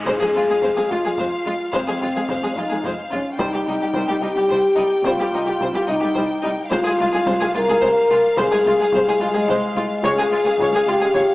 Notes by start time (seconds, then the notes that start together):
0.06 F1 F2 G#3 G#4 C5 F5, taiko, sub drop
0.21 F2 G#3 G#4
0.35 F1 F2 G#3 F4
0.49 F2 G#3 G#4
0.62 F1 F2 G#3 C5, taiko
0.76 F2 G#3 G#4
0.90 F1 F2 G#3 F4
1.04 F2 G#3 G#4
1.18 F1 F2 G#3 C5, taiko
1.46 F1 F2 G#3 F4
1.73 F1 F2 G#3 C4 C5, taiko
1.88 F2 G#3 G#4
2.02 F1 F2 G#3 F4
2.15 F2 G#3 G#4
2.29 F1 F2 G#3 C5, taiko
2.43 F2 G#3 G#4
2.55 F1 F2 G#3 D#4 F4
2.70 F2 G#3 G#4
2.84 F1 F2 G#3 C5, taiko
3.11 F1 F2 G#3 C#4 F4
3.38 C2 G3 D#4 C5 G5, taiko
3.52 C2 G3 G4
3.67 C2 G3 D#4
3.81 C2 G3 G4
3.94 C2 G3 C5, taiko
4.08 C2 G3 G4
4.21 C2 G3 D#4 G4
4.36 C2 G3 G4
4.49 C2 G3 C5, taiko
4.77 C2 G3 D#4
5.04 C2 G3 F4 C5, taiko
5.19 C2 G3 G4
5.33 C2 G3 D#4
5.46 C2 G3 G4
5.60 C2 G3 C5, taiko
5.74 C2 G3 G4
5.88 C2 G3 D#4
6.01 C2 G3 G4
6.15 C2 G3 C5, taiko
6.44 C2 G3 D#4
6.71 C2 G#3 F4 C5 F5, taiko
6.85 C2 G#3 G#4
6.99 C2 G#3 F4
7.13 C2 G#3 G#4
7.27 C2 G#3 C5, taiko
7.40 C2 G#3 G#4
7.54 C2 G#3 F4 A#4
7.68 C2 G#3 G#4
7.82 C2 G#3 C5, taiko
8.10 C2 G#3 F4
8.37 C2 G#3 G#4 C5, taiko
8.52 C2 G#3 G#4
8.65 C2 G#3 F4
8.79 C2 G#3 G#4
8.92 C2 G#3 C5, taiko
9.07 C2 G#3 G#4
9.21 C2 G#3 F4
9.34 C2 G#3 G#4
9.48 C2 G#3 C5, taiko
9.76 C2 G#3 F4
10.04 C#2 G#3 G#4 C#5 F5, taiko
10.18 C#2 G#3 G#4
10.31 C#2 G#3 F4
10.45 C#2 G#3 G#4
10.59 C#2 G#3 C#5, taiko
10.73 C#2 G#3 G#4
10.87 C#2 G#3 F4 G4
11.01 C#2 G#3 G#4
11.14 C#2 G#3 C#5, taiko